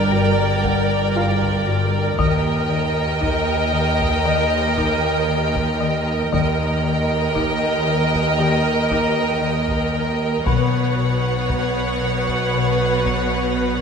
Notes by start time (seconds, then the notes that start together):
Already playing: G1 G2 G4 A#4 D5 G5
0.12 G2
0.64 G3, taiko
1.16 G2 F4 F5
1.42 taiko
1.67 G2
2.18 D#2 D#3 A#4 D#5 G5, taiko
2.70 D#3
3.21 D#4, taiko
3.73 D#3
4.00 taiko
4.26 D#3
4.78 D#4, taiko
5.29 D#3
5.56 taiko
5.80 D#3
6.32 D#2 D#3 A#4 D#5 G5, taiko
6.84 D#3
7.35 D#4, taiko
7.87 D#3
8.14 taiko
8.39 D#3 G4
8.91 D#4, taiko
9.42 D#3
9.69 taiko
9.94 D#3
10.45 B1 B2 B4 C#5 F#5, taiko
10.99 B2
11.50 B3, taiko
12.02 B2
12.28 taiko
12.54 B2
13.05 B3, taiko
13.57 B2